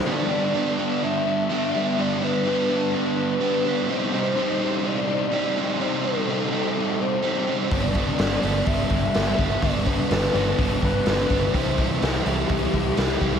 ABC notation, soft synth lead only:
X:1
M:4/4
L:1/8
Q:1/4=125
K:G
V:1 name="Soft synth lead"
d4 e4 | d B4 B3 | c4 d4 | c A4 c3 |
d4 e4 | d B4 B3 | c2 z G4- G |]